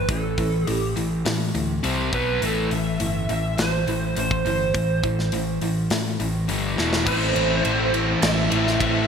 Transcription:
0.09 0.34 A1 medium
0.09 0.35 A2 medium
0.09 0.35 E3 medium
0.09 0.69 A4 medium
0.09 kick loud
0.09 open hi-hat medium
0.38 0.64 A1 medium
0.38 0.64 A2 medium
0.38 0.64 E3 medium
0.38 kick medium
0.38 open hi-hat medium
0.67 0.93 A1 medium
0.67 0.93 A2 medium
0.67 0.93 E3 medium
0.67 0.93 G4 medium
0.67 open hi-hat medium
0.96 1.22 A1 medium
0.96 1.22 A2 medium
0.96 1.23 E3 medium
0.96 open hi-hat soft
1.25 1.51 A2 medium
1.25 1.52 E3 medium
1.25 snare loud
1.25 open hi-hat medium
1.55 1.80 D2 medium
1.55 1.81 A2 medium
1.55 1.81 E3 medium
1.55 open hi-hat soft
1.83 2.10 C2 medium
1.83 2.11 C3 medium
1.83 2.11 G3 medium
1.83 2.11 C4 loud
1.83 open hi-hat medium
2.13 2.39 B1 medium
2.13 2.40 B2 medium
2.13 2.40 F#3 medium
2.13 2.41 B3 medium
2.13 2.43 B4 medium
2.13 kick loud
2.13 open hi-hat soft
2.42 2.67 A1 loud
2.42 2.69 A2 medium
2.42 2.70 E3 medium
2.42 2.70 A3 medium
2.42 2.73 A4 medium
2.42 open hi-hat medium
2.71 2.97 A1 medium
2.71 2.97 A2 medium
2.71 2.97 E3 medium
2.71 3.30 E5 loud
2.71 open hi-hat soft
3.00 3.26 G1 medium
3.00 3.26 A2 medium
3.00 3.26 E3 medium
3.00 open hi-hat medium
3.29 3.55 A1 medium
3.29 3.55 A2 medium
3.29 3.56 E3 medium
3.29 3.60 E5 loud
3.29 open hi-hat soft
3.58 3.84 A1 medium
3.58 3.85 A2 medium
3.58 3.85 E3 medium
3.58 4.17 C5 medium
3.58 snare loud
3.58 open hi-hat medium
3.87 4.13 A1 medium
3.87 4.14 A2 medium
3.87 4.14 E3 medium
3.87 open hi-hat soft
4.16 4.42 A1 medium
4.16 4.43 A2 medium
4.16 4.43 E3 medium
4.16 4.45 C5 medium
4.16 open hi-hat medium
4.31 kick medium
4.45 4.71 G1 medium
4.45 4.72 A2 medium
4.45 4.72 E3 medium
4.45 5.00 C5 medium
4.45 open hi-hat soft
4.74 5.00 A1 medium
4.74 5.01 A2 medium
4.74 5.01 E3 medium
4.74 kick medium
4.74 open hi-hat medium
5.03 5.29 A1 medium
5.03 5.30 A2 medium
5.03 5.30 E3 medium
5.03 kick medium
5.03 open hi-hat soft
5.19 snare soft
5.32 5.58 A1 medium
5.32 5.59 A2 medium
5.32 5.59 E3 medium
5.32 open hi-hat medium
5.61 5.87 A1 medium
5.61 5.88 A2 medium
5.61 5.88 E3 medium
5.61 open hi-hat soft
5.90 6.16 A2 medium
5.90 6.17 A2 medium
5.90 6.17 E3 medium
5.90 snare loud
5.90 open hi-hat medium
6.20 6.45 A1 medium
6.20 6.46 A2 medium
6.20 6.46 E3 medium
6.20 open hi-hat soft
6.48 6.75 G1 medium
6.48 6.76 G2 medium
6.48 6.76 D3 loud
6.48 6.76 G3 medium
6.48 open hi-hat medium
6.77 7.04 E1 medium
6.77 7.05 E2 medium
6.77 7.04 B2 medium
6.77 7.05 E3 medium
6.77 snare medium
6.93 snare medium
7.04 7.31 A1 medium
7.04 8.48 A2 medium
7.04 7.33 A2 loud
7.04 7.33 E3 loud
7.04 8.49 E3 medium
7.04 7.34 A3 loud
7.04 8.49 A3 loud
7.04 7.35 C4 loud
7.04 7.35 E4 loud
7.04 7.90 C5 loud
7.04 9.07 C5 medium
7.04 9.07 A5 medium
7.04 kick loud
7.04 crash loud
7.08 9.07 E4 medium
7.34 7.60 A1 medium
7.34 7.63 A2 medium
7.34 7.63 E3 medium
7.34 7.64 A3 medium
7.34 7.65 C4 medium
7.34 7.65 E4 loud
7.34 ride medium
7.64 8.14 A1 medium
7.64 7.92 A2 medium
7.64 7.92 E3 medium
7.64 7.93 A3 loud
7.64 7.93 C4 loud
7.64 7.93 E4 loud
7.64 ride loud
7.93 8.20 A2 medium
7.93 8.21 E3 loud
7.93 8.21 A3 medium
7.93 8.22 C4 loud
7.93 8.23 E4 loud
7.93 ride medium
8.22 8.47 A1 loud
8.22 8.51 A2 medium
8.22 8.51 E3 medium
8.22 8.52 A3 medium
8.22 8.52 C4 medium
8.22 8.53 E4 medium
8.22 8.77 E5 loud
8.22 snare loud
8.22 ride loud
8.50 8.76 A1 medium
8.50 8.78 A2 loud
8.50 8.78 A2 medium
8.50 8.79 E3 medium
8.50 8.79 E3 loud
8.50 8.78 A3 medium
8.50 8.79 A3 medium
8.50 8.80 C4 loud
8.50 8.80 E4 loud
8.50 ride medium
8.67 snare soft
8.79 9.07 A1 medium
8.79 9.07 A2 medium
8.79 9.07 E3 loud
8.79 9.07 E3 medium
8.79 9.07 A3 loud
8.79 9.07 C4 loud
8.79 9.07 E4 medium
8.79 9.07 E5 medium
8.79 kick medium
8.79 ride loud

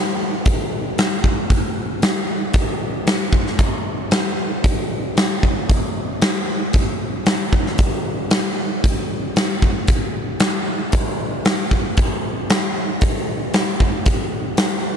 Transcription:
0.46 kick loud
0.46 open hi-hat medium
0.98 snare loud
0.98 open hi-hat soft
1.24 kick medium
1.50 kick medium
1.50 open hi-hat soft
2.02 snare loud
2.02 open hi-hat medium
2.53 kick medium
2.53 open hi-hat soft
3.07 snare loud
3.07 open hi-hat soft
3.33 kick medium
3.47 snare soft
3.59 kick medium
3.59 open hi-hat soft
4.11 snare loud
4.11 open hi-hat medium
4.64 kick medium
4.64 open hi-hat soft
5.17 snare loud
5.17 open hi-hat medium
5.43 kick medium
5.70 kick medium
5.70 open hi-hat soft
6.22 snare loud
6.22 open hi-hat medium
6.73 kick loud
6.73 open hi-hat soft
7.26 snare medium
7.26 open hi-hat soft
7.53 kick medium
7.67 snare soft
7.78 kick medium
7.78 open hi-hat soft
8.31 snare loud
8.31 open hi-hat medium
8.84 kick medium
8.84 open hi-hat medium
9.36 snare medium
9.36 open hi-hat soft
9.62 kick medium
9.87 kick loud
9.87 open hi-hat soft
10.40 snare loud
10.40 open hi-hat medium
10.92 kick loud
10.92 open hi-hat medium
11.45 snare loud
11.45 open hi-hat soft
11.71 kick medium
11.97 kick loud
11.97 open hi-hat soft
12.50 snare loud
12.50 open hi-hat medium
13.01 kick loud
13.01 open hi-hat soft
13.54 snare medium
13.54 open hi-hat soft
13.80 kick medium
14.06 kick loud
14.06 open hi-hat soft
14.57 snare loud
14.57 open hi-hat medium

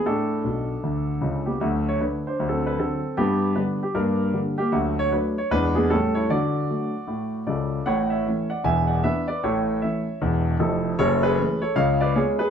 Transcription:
0.06 0.39 A2 medium
0.06 1.43 D4 medium
0.06 1.47 A4 medium
0.44 0.74 B1 soft
0.44 0.73 B2 medium
0.83 1.13 D2 medium
0.83 1.13 D3 medium
1.21 1.51 C#2 medium
1.21 1.51 C#3 medium
1.46 1.61 B3 soft
1.46 1.61 G4 medium
1.60 1.94 D2 medium
1.60 1.84 F#3 soft
1.60 1.86 A3 medium
1.60 1.87 F#4 medium
1.88 2.01 C#5 medium
2.00 2.22 D3 soft
2.00 2.22 A3 soft
2.00 2.25 D4 soft
2.00 2.27 B4 medium
2.27 2.47 D4 medium
2.27 2.48 C5 medium
2.39 2.73 D2 medium
2.39 2.63 F#3 soft
2.49 2.66 C4 soft
2.49 2.66 A4 medium
2.67 2.79 B4 medium
2.79 3.00 D3 soft
2.79 3.00 F#3 soft
2.79 3.16 C4 medium
2.79 3.18 A4 medium
3.17 3.51 G2 medium
3.17 3.55 B3 medium
3.17 3.56 G4 medium
3.56 3.78 D3 soft
3.56 3.78 G3 soft
3.56 3.78 B3 soft
3.56 3.81 D4 medium
3.56 3.82 B4 medium
3.83 3.96 G4 medium
3.95 4.28 G2 medium
3.95 4.18 A#3 medium
3.95 4.32 D4 medium
3.95 4.34 A#4 medium
4.33 4.55 D3 soft
4.33 4.55 G3 soft
4.33 4.56 A#3 soft
4.58 4.73 A#3 medium
4.58 4.73 G4 medium
4.72 5.06 D2 medium
4.72 4.96 F#3 medium
4.72 4.98 A3 medium
4.72 4.99 F#4 medium
4.99 5.13 C#5 medium
5.12 5.34 F#3 soft
5.12 5.34 A3 soft
5.12 5.37 D4 soft
5.12 5.39 B4 medium
5.38 5.52 C#5 medium
5.51 5.85 E2 medium
5.51 5.73 E3 soft
5.51 5.74 G#3 medium
5.51 5.74 D4 medium
5.51 5.76 B4 loud
5.75 5.90 B3 medium
5.75 5.91 G#4 medium
5.90 6.24 A2 medium
5.90 6.12 G3 soft
5.90 6.13 A3 soft
5.90 6.14 C#4 medium
5.90 6.14 A4 medium
6.15 6.29 E4 medium
6.15 6.30 C#5 medium
6.30 6.63 D3 medium
6.30 7.68 F#4 medium
6.30 7.45 D5 medium
6.69 6.91 F#3 soft
6.69 6.91 A3 soft
6.69 6.91 D4 soft
7.07 7.41 A2 medium
7.47 7.78 C#2 medium
7.47 7.78 C#3 medium
7.47 7.84 A4 soft
7.47 7.86 D5 medium
7.86 8.19 A1 medium
7.86 8.19 A2 medium
7.86 8.09 C#5 medium
7.86 8.10 F#5 medium
8.10 8.47 C#5 medium
8.10 8.49 E5 medium
8.26 8.48 E3 soft
8.26 8.48 A3 soft
8.26 8.48 C#4 soft
8.50 8.64 D5 medium
8.50 8.65 F#5 medium
8.64 8.98 E1 medium
8.64 8.98 E2 medium
8.64 8.87 E5 medium
8.64 8.88 G#5 medium
8.87 9.03 D5 medium
8.87 9.03 F#5 medium
9.04 9.25 E3 soft
9.04 9.25 B3 soft
9.04 9.26 D4 soft
9.04 9.26 B4 medium
9.04 9.27 E5 medium
9.28 9.42 B4 medium
9.28 9.43 D5 medium
9.43 9.76 A1 medium
9.43 9.76 A2 medium
9.43 9.80 A4 medium
9.43 9.82 C#5 medium
9.82 10.04 E3 soft
9.82 10.04 A3 soft
9.82 10.04 C#4 soft
9.82 10.57 C#5 medium
9.82 10.60 E5 medium
10.22 10.54 E1 medium
10.22 10.54 E2 medium
10.60 10.91 F1 medium
10.60 10.91 F2 medium
10.60 10.97 E4 medium
10.60 10.99 A4 medium
10.99 11.32 F#1 medium
10.99 11.32 F#2 medium
10.99 11.22 A4 medium
10.99 11.23 C#5 loud
11.23 11.60 G#4 medium
11.23 11.62 B4 medium
11.37 11.59 E3 soft
11.37 11.59 A3 soft
11.37 11.60 C#4 soft
11.62 11.76 A4 medium
11.62 11.75 C#5 medium
11.76 12.09 C#2 medium
11.76 12.09 C#3 medium
11.76 11.99 C#5 medium
11.76 12.00 F5 medium
12.01 12.16 B4 medium
12.01 12.16 D5 medium
12.15 12.37 G#3 medium
12.15 12.37 B3 soft
12.15 12.38 C#4 medium
12.15 12.38 G#4 medium
12.15 12.40 C#5 medium
12.39 12.50 G#4 medium
12.39 12.50 B4 medium

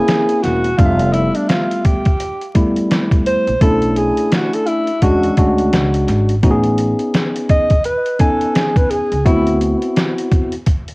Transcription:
0.00 0.68 A#3 medium
0.00 0.69 C4 medium
0.00 0.69 C#4 medium
0.00 0.69 E4 medium
0.00 0.44 G#4 loud
0.08 snare loud
0.08 closed hi-hat medium
0.29 closed hi-hat medium
0.43 0.74 E1 medium
0.43 0.79 F#4 medium
0.43 snare soft
0.43 closed hi-hat medium
0.64 closed hi-hat soft
0.77 1.27 F1 loud
0.77 2.06 G3 medium
0.77 2.06 A3 medium
0.77 2.07 B3 medium
0.77 0.87 D4 medium
0.77 1.14 F4 loud
0.77 kick loud
0.77 closed hi-hat medium
0.86 2.10 E5 medium
0.99 closed hi-hat medium
1.13 1.37 E4 medium
1.13 closed hi-hat medium
1.35 1.51 D4 medium
1.35 closed hi-hat soft
1.49 1.86 F4 medium
1.49 snare loud
1.49 closed hi-hat medium
1.71 closed hi-hat medium
1.85 2.55 G4 medium
1.85 kick medium
1.85 closed hi-hat medium
2.05 kick medium
2.05 closed hi-hat medium
2.20 closed hi-hat medium
2.41 closed hi-hat soft
2.55 3.51 G3 medium
2.55 3.51 A3 medium
2.55 3.51 B3 medium
2.55 3.52 E4 medium
2.55 kick medium
2.55 closed hi-hat medium
2.76 closed hi-hat soft
2.91 snare loud
2.91 closed hi-hat medium
3.12 kick loud
3.12 closed hi-hat medium
3.26 3.59 C5 loud
3.26 closed hi-hat medium
3.47 3.59 A#1 medium
3.47 closed hi-hat soft
3.61 4.09 B1 loud
3.61 4.89 A3 medium
3.61 4.89 C#4 medium
3.61 4.90 D4 medium
3.61 4.90 E4 medium
3.61 3.99 A4 loud
3.61 kick loud
3.61 closed hi-hat medium
3.82 closed hi-hat soft
3.96 4.35 G#4 medium
3.96 closed hi-hat medium
4.17 closed hi-hat medium
4.32 4.56 F#4 medium
4.32 snare loud
4.32 closed hi-hat medium
4.53 4.69 A4 medium
4.53 closed hi-hat medium
4.67 5.05 E4 medium
4.67 closed hi-hat medium
4.87 closed hi-hat soft
5.02 5.32 E2 medium
5.02 5.34 G#3 medium
5.02 5.34 C#4 medium
5.02 5.35 D4 medium
5.02 5.38 F#4 medium
5.02 5.35 F#4 medium
5.02 kick medium
5.02 closed hi-hat medium
5.23 closed hi-hat soft
5.37 5.67 D2 medium
5.37 6.33 G#3 medium
5.37 6.34 C#4 medium
5.37 6.34 D4 medium
5.37 6.34 F#4 medium
5.37 kick medium
5.37 closed hi-hat medium
5.58 closed hi-hat soft
5.73 6.03 C#2 loud
5.73 snare loud
5.73 closed hi-hat medium
5.94 closed hi-hat medium
6.08 6.38 G#1 loud
6.08 snare soft
6.08 closed hi-hat medium
6.29 closed hi-hat soft
6.43 6.91 A1 loud
6.43 7.71 B3 medium
6.43 7.72 C#4 medium
6.43 7.72 D#4 medium
6.43 6.52 F#4 medium
6.43 kick loud
6.43 closed hi-hat medium
6.51 7.75 G#4 loud
6.64 closed hi-hat medium
6.78 closed hi-hat medium
6.99 closed hi-hat soft
7.14 snare loud
7.14 closed hi-hat medium
7.36 closed hi-hat medium
7.49 7.83 D#5 loud
7.49 kick loud
7.49 closed hi-hat medium
7.70 kick medium
7.70 closed hi-hat soft
7.84 8.21 B4 loud
7.84 closed hi-hat medium
8.06 closed hi-hat soft
8.19 9.16 B3 medium
8.19 9.16 C#4 medium
8.19 9.16 D#4 medium
8.19 8.57 A4 medium
8.19 9.16 G#5 medium
8.19 kick medium
8.19 closed hi-hat medium
8.41 closed hi-hat soft
8.55 8.79 G#4 medium
8.55 snare loud
8.55 closed hi-hat medium
8.76 8.92 B4 medium
8.76 kick loud
8.76 closed hi-hat medium
8.91 9.26 G#4 medium
8.91 closed hi-hat medium
9.12 9.24 C#2 medium
9.12 closed hi-hat soft
9.25 9.74 D2 loud
9.25 10.53 B3 medium
9.25 10.53 C4 medium
9.25 10.54 E4 medium
9.25 9.59 E4 medium
9.25 10.54 F#4 medium
9.25 kick loud
9.25 closed hi-hat medium
9.47 closed hi-hat soft
9.61 closed hi-hat medium
9.82 closed hi-hat soft
9.96 snare loud
9.96 closed hi-hat medium
10.18 closed hi-hat medium
10.32 kick medium
10.32 closed hi-hat medium
10.52 closed hi-hat soft
10.66 kick medium
10.66 closed hi-hat medium
10.88 closed hi-hat soft

